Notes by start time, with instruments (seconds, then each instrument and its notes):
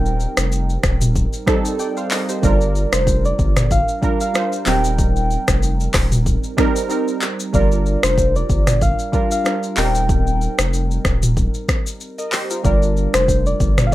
Already playing: sub bass D#1, synth keys G3 C4 D#4 A#4, soft synth lead G5
0.06 shaker
0.20 shaker
0.37 sub bass F1, finger snap, cross-stick, shaker
0.52 shaker
0.70 shaker
0.83 sub bass D#1, finger snap, kick, cross-stick, shaker
1.01 mid tom, shaker
1.16 kick, shaker
1.33 shaker
1.46 synth keys G3 C4 D#4 A4, finger snap, kick, cross-stick, shaker
1.65 shaker
1.79 synth keys D5 G5, shaker
1.97 synth keys C5 F5, shaker
2.11 synth keys A#4 D#5, clap, open hi-hat, shaker
2.29 synth keys G4 C5, shaker
2.42 sub bass G1, synth keys G3 D4 F4 A#4, soft synth lead D5, kick, shaker
2.61 shaker
2.75 shaker
2.93 sub bass F1, soft synth lead C5, finger snap, cross-stick, shaker
3.07 kick, shaker
3.25 soft synth lead D5, shaker
3.39 sub bass G1, kick, shaker
3.56 finger snap, cross-stick, mid tom, shaker
3.71 soft synth lead F5, kick, shaker
3.88 shaker
4.02 synth keys G3 D4 F4 A#4, kick, shaker
4.21 soft synth lead F5, shaker
4.34 synth keys G3 D4 F4 C5, finger snap, cross-stick, shaker
4.52 shaker
4.65 sub bass D#1, synth keys F#3 C4 D#4 A#4, soft synth lead G5, clap, open hi-hat, shaker
4.72 synth keys G3
4.84 shaker
4.99 kick, shaker
5.16 shaker
5.31 shaker
5.48 sub bass F1, finger snap, kick, cross-stick, shaker
5.63 shaker
5.80 shaker
5.94 sub bass D#1, finger snap, kick, cross-stick, clap, open hi-hat, shaker
6.12 mid tom, shaker
6.26 kick, shaker
6.44 shaker
6.57 synth keys G3 C4 D#4 A#4, finger snap, kick, cross-stick, shaker
6.76 shaker
6.89 synth keys G3 C4 D#4 A#4, shaker
7.08 shaker
7.22 clap, shaker
7.40 shaker
7.53 sub bass G1, synth keys G3 D4 F4 A#4, soft synth lead D5, kick, shaker
7.72 shaker
7.86 shaker
8.03 sub bass F1, soft synth lead C5, finger snap, cross-stick, shaker
8.18 kick, shaker
8.36 soft synth lead D5, shaker
8.50 sub bass G1, kick, shaker
8.67 finger snap, cross-stick, mid tom, shaker
8.81 soft synth lead F5, kick, shaker
8.99 shaker
9.12 synth keys G3 D4 F4 A#4, kick, shaker
9.31 soft synth lead F5, shaker
9.44 synth keys G3 D4 F4 A#4, finger snap, cross-stick, shaker
9.63 shaker
9.76 sub bass D#1, synth keys G3 C4 D#4 A#4, soft synth lead G5, clap, open hi-hat, shaker
9.95 shaker
10.09 kick, shaker
10.27 shaker
10.41 shaker
10.59 sub bass F1, finger snap, cross-stick, shaker
10.73 shaker
10.91 shaker
11.05 sub bass D#1, finger snap, kick, cross-stick, shaker
11.23 mid tom, shaker
11.37 kick, shaker
11.54 shaker
11.69 finger snap, kick, cross-stick, shaker
11.87 shaker
12.01 shaker
12.18 synth keys A#4 D#5, shaker
12.32 synth keys G4 C5, clap, open hi-hat, shaker
12.50 synth keys F4 A#4, shaker
12.63 sub bass G1, synth keys G3 D4 F4 A#4, soft synth lead D5, kick, shaker
12.82 shaker
12.97 shaker
13.14 sub bass F1, soft synth lead C5, finger snap, cross-stick, shaker
13.28 kick, shaker
13.46 soft synth lead D5, shaker
13.60 sub bass G1, kick, shaker
13.78 finger snap, cross-stick, mid tom, shaker
13.87 soft synth lead F5